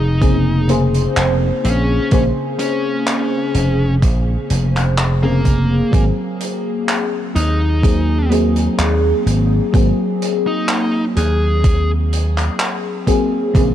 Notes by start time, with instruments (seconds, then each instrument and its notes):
Already playing: slap bass F1, fm electric piano C#3 A#3 C4 G#4, lead electric guitar D#4
0.21 fm electric piano C#3 A#3 C4 G#4, kick, closed hi-hat
0.68 fm electric piano C#3 A#3 G#4 C5, closed hi-hat
0.94 closed hi-hat
1.16 slap bass F1, clap, closed hi-hat
1.65 slap bass A#1, lead electric guitar C#4, closed hi-hat
2.11 slap bass A#1, fm electric piano C#3 A#3 G#4 C5, kick, closed hi-hat
2.59 lead electric guitar C#4, closed hi-hat
3.07 clap, closed hi-hat
3.55 slap bass F1, closed hi-hat
4.02 slap bass A#1, kick, closed hi-hat
4.50 slap bass F1, closed hi-hat
4.77 clap, closed hi-hat
4.98 clap, closed hi-hat
5.22 fm electric piano C#3 A#3 C4 G#4, lead electric guitar A#3
5.45 kick, closed hi-hat
5.91 slap bass G#1, fm electric piano F#3 A#3 C4 G#4, kick, closed hi-hat
6.41 closed hi-hat
6.89 clap, closed hi-hat
7.36 slap bass D#2, lead electric guitar D#4, closed hi-hat
7.82 fm electric piano F#3 A#3 C4 G#4, kick, closed hi-hat
8.29 fm electric piano F#3 A#3 C4 G#4, closed hi-hat
8.56 closed hi-hat
8.79 slap bass D#2, clap, closed hi-hat
9.26 slap bass G#1, closed hi-hat
9.72 slap bass G#1, fm electric piano F#3 A#3 C4 G#4, kick, closed hi-hat
10.22 closed hi-hat
10.47 lead electric guitar D#4
10.69 clap, closed hi-hat
11.17 slap bass D#2, lead electric guitar G#4, closed hi-hat
11.64 kick, closed hi-hat
12.13 closed hi-hat
12.38 clap, closed hi-hat
12.60 clap, closed hi-hat
13.06 fm electric piano F#3 A#3 C4 G#4, kick, closed hi-hat
13.53 slap bass A#1, fm electric piano C#3 A#3 C4 G#4, kick, closed hi-hat